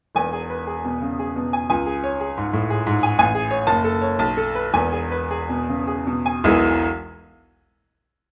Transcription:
grand piano
0.15 E1 E2 G#5
0.33 G#4
0.50 B4
0.67 G#4
0.85 B2
1.02 C#3
1.19 G#4
1.36 B2
1.53 G#5
1.70 C#2 G#5
1.86 G#4
2.04 C#5
2.20 G#4
2.37 G#2
2.53 A2
2.70 G#4
2.87 G#2
3.03 G#5
3.19 A1 G#5
3.35 G#4
3.51 C#5
3.67 F#1 A5
3.84 A4
4.02 C#5
4.19 B1 A5
4.37 A4
4.55 B4
4.73 E1 E2 G#5
4.92 G#4
5.12 B4
5.31 G#4
5.49 B2
5.69 C#3
5.87 G#4
6.07 B2
6.26 G#5
6.44 E1 B1 E3 G#3 B3 E4

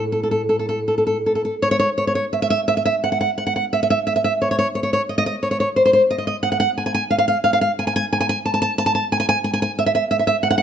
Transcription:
nylon-string guitar
Already playing: A2
0.12 A4
0.23 A4
0.31 A4
0.49 A4
0.59 A4
0.69 A4
0.88 A4
0.98 A4
1.07 A4
1.26 A4
1.35 A4
1.45 A4
1.62 C#5
1.71 C#5
1.79 C#5
1.98 C#5
2.07 C#5
2.15 C#5
2.33 E5
2.42 E5
2.50 E5
2.68 E5
2.77 E5
2.85 E5
3.04 F#5
3.12 F#5
3.21 F#5
3.38 F#5
3.47 F#5
3.56 F#5
3.73 E5
3.83 E5
3.90 E5
4.07 E5
4.16 E5
4.24 E5
4.42 C#5
4.51 C#5
4.59 C#5
4.75 C#5
4.83 C#5
4.93 C#5
5.09 D#5
5.18 D#5
5.26 D#5
5.43 C#5
5.51 C#5
5.60 C#5
5.76 C5
5.86 C5
5.93 C5
6.11 D#5
6.18 D#5
6.27 D#5
6.43 F#5
6.52 F#5
6.60 F#5
6.78 G#5
6.86 G#5
6.94 G#5
7.11 F5
7.18 F5
7.28 F5
7.44 F5
7.53 F5
7.61 F5
7.79 G#5
7.87 G#5
7.96 G#5
8.13 G#5
8.21 G#5
8.29 G#5
8.46 A5
8.54 A5
8.62 A5
8.78 A5
8.86 A5
8.95 A5
9.12 G#5
9.20 G#5
9.29 G#5
9.44 G#5
9.53 G#5
9.62 G#5
9.79 E5
9.86 E5
9.95 E5
10.11 E5
10.19 E5
10.27 E5
10.43 F#5
10.51 F#5
10.58 F#5

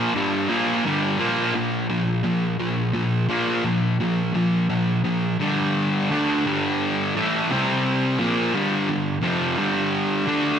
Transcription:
distorted electric guitar
Already playing: A#2 F3 A#3
0.15 G2 D3 G3
0.49 A#2 F3 A#3
0.85 G2 D3 G3
1.19 A#2 F3 A#3
1.54 A#2 F3
1.90 A#2 F3
2.24 A#2 F3
2.60 A#2 F3
2.93 A#2 F3
3.29 A#2 F3 A#3
3.65 A#2 F3
4.00 A#2 F3
4.34 A#2 F3
4.70 A#2 F3
5.04 A#2 F3
5.40 G2 D3 G3
6.10 D3 A3 D4
6.46 G2 D3 G3
7.16 A2 E3 A3
7.51 C3 G3 C4
8.19 A#2 F3 A#3
8.53 G2 D3 G3
8.89 G2 D3
9.22 F2 C3 F3
9.56 G2 D3 G3
10.27 D3 A3 D4

